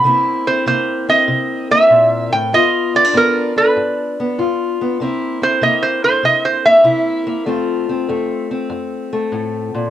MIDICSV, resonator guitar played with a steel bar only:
0, 0, Header, 1, 2, 480
1, 0, Start_track
1, 0, Tempo, 617920
1, 39, Time_signature, 4, 2, 24, 8
1, 7690, End_track
2, 0, Start_track
2, 0, Title_t, "Resonator guitar played with a steel bar"
2, 0, Program_c, 0, 25
2, 367, Note_on_c, 0, 72, 79
2, 515, Note_off_c, 0, 72, 0
2, 525, Note_on_c, 0, 72, 89
2, 825, Note_off_c, 0, 72, 0
2, 851, Note_on_c, 0, 75, 90
2, 1297, Note_off_c, 0, 75, 0
2, 1332, Note_on_c, 0, 76, 98
2, 1806, Note_on_c, 0, 79, 92
2, 1823, Note_off_c, 0, 76, 0
2, 1966, Note_off_c, 0, 79, 0
2, 1973, Note_on_c, 0, 75, 94
2, 2295, Note_off_c, 0, 75, 0
2, 2298, Note_on_c, 0, 74, 86
2, 2452, Note_off_c, 0, 74, 0
2, 2463, Note_on_c, 0, 70, 87
2, 2755, Note_off_c, 0, 70, 0
2, 2778, Note_on_c, 0, 71, 80
2, 3702, Note_off_c, 0, 71, 0
2, 4221, Note_on_c, 0, 72, 93
2, 4367, Note_off_c, 0, 72, 0
2, 4374, Note_on_c, 0, 75, 77
2, 4524, Note_off_c, 0, 75, 0
2, 4526, Note_on_c, 0, 72, 78
2, 4679, Note_off_c, 0, 72, 0
2, 4694, Note_on_c, 0, 72, 88
2, 4844, Note_off_c, 0, 72, 0
2, 4855, Note_on_c, 0, 75, 82
2, 5004, Note_off_c, 0, 75, 0
2, 5011, Note_on_c, 0, 72, 73
2, 5162, Note_off_c, 0, 72, 0
2, 5170, Note_on_c, 0, 76, 87
2, 5787, Note_off_c, 0, 76, 0
2, 7690, End_track
0, 0, End_of_file